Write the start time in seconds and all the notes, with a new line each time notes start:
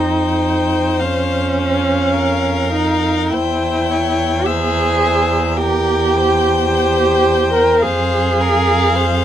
Already playing: F2 D#4 C5 G5
1.00 C#4 F5
1.56 F5
2.18 A#4
2.72 D#4
3.31 E2 E4 C5 G5
3.91 C#5
4.45 G#4 C5 E5
5.01 E5
5.57 G4 A#4 G5
6.17 C5
6.69 G4
7.53 A#4
7.82 F2 G#4 C5 F5
8.41 A#4
8.96 C5